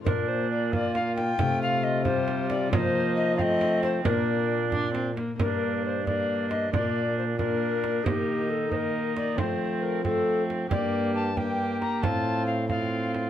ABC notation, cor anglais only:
X:1
M:6/8
L:1/8
Q:3/8=90
K:Bb
V:1 name="Cor anglais"
D3 F3- | F6 | E3 C3 | D4- D z |
D3 D3 | D3 D3 | E3 E3 | C3 C3 |
G3 G3 | F3 F3 |]